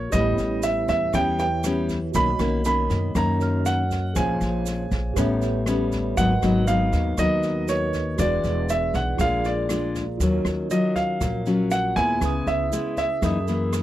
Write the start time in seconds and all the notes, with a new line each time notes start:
Already playing: A#2 A#4 C#5 F6
0.10 A1 A2 G3 B3 C#4 G4 B4 C#5 D#5, kick, cross-stick, snare, shaker
0.16 E4
0.37 A1, snare, shaker
0.63 E5, snare, shaker
0.88 E2 E5, kick, snare, shaker
1.13 E2 E3 G3 B3 C#4 G5, kick, cross-stick, snare, shaker
1.38 G4 B4 C#5 E5 G5, snare, shaker
1.64 G3 B3 C#4, cross-stick, snare, shaker
1.89 kick, snare, shaker
2.12 B1 B2 D#3 A#3 C#4 F#4 B5, kick, snare, shaker
2.16 C#5 D#5
2.39 B1 D#3 A#3 C#4, cross-stick, snare, shaker
2.65 D#3 A#3 C#4 B5, snare, shaker
2.90 F#2, kick, snare, shaker
3.15 F#2 D#3 A#3 C#4 A#5, kick, cross-stick, snare, shaker
3.39 F#4 A#4 C#5 F6, snare, shaker
3.66 F#5, snare, shaker
3.91 kick, snare, shaker
4.13 A#1 A#2 F3 G#3 C#4 G#4 C5 C#5 G#5, kick, cross-stick, snare, shaker
4.19 F5
4.41 A#1, snare, shaker
4.66 snare, shaker
4.91 A#1, kick, snare, shaker
5.14 A1 A2 G3 B3 C#4 G4 B4 C#5, kick, cross-stick, snare, shaker
5.20 E5
5.42 snare, shaker
5.66 G3 B3 C#4, cross-stick, snare, shaker
5.92 kick, snare, shaker
6.15 G#1 G#2 F#3 B3 D#4 F#4 A#4 B4 F#5, kick, snare, shaker
6.21 D#5
6.42 G#1 F#3 B3 D#4, cross-stick, snare, shaker
6.67 F#3 B3 D#4 F5, snare, shaker
6.92 D#2, kick, snare, shaker
7.17 D#2 D#3 F#3 B3 D#4 D#5, kick, cross-stick, snare, shaker
7.43 snare, shaker
7.68 F#4 A#4 B4 C#5 D#5, snare, shaker
7.93 kick, snare, shaker
8.16 E1 E3 G#3 D4 F#4 G#4 D5, kick, cross-stick, snare, shaker
8.21 B4 D5
8.44 E1, snare, shaker
8.69 E5, snare, shaker
8.94 B1 F#5, kick, snare, shaker
9.17 A#1 A#2 G#3 D4 F4 G#4 A#4 F5, kick, cross-stick, snare, shaker
9.21 F4 D5
9.44 D5, snare, shaker
9.69 G#3 D4 F4, cross-stick, snare, shaker
9.95 kick, snare, shaker
10.18 D#2 D#3 F#3 F4 A#4, kick, snare, shaker
10.22 C#4 F4 C#5
10.45 D#2, cross-stick, snare, shaker
10.70 F#3 C#4 F4 D#5, snare, shaker
10.95 F5, kick, snare, shaker
11.21 A#1 A#2, kick, cross-stick, snare, shaker
11.46 F#3 C#4 F4, snare, shaker
11.71 F#5, snare, shaker
11.96 D#2 G#3 B3 E4 G#5, kick, snare, shaker
12.19 C#2 C#3 E4 G#4 B4, kick, cross-stick, snare, shaker
12.25 D#6
12.47 C#2 E5, snare, shaker
12.72 G#3 B3 E4, snare, shaker
12.97 E5, kick, snare, shaker
13.21 F#2 E3 A#3 D#4 G#4 A#4, kick, cross-stick, snare, shaker
13.26 D#6
13.48 E3 A#3, snare, shaker
13.73 cross-stick, snare, shaker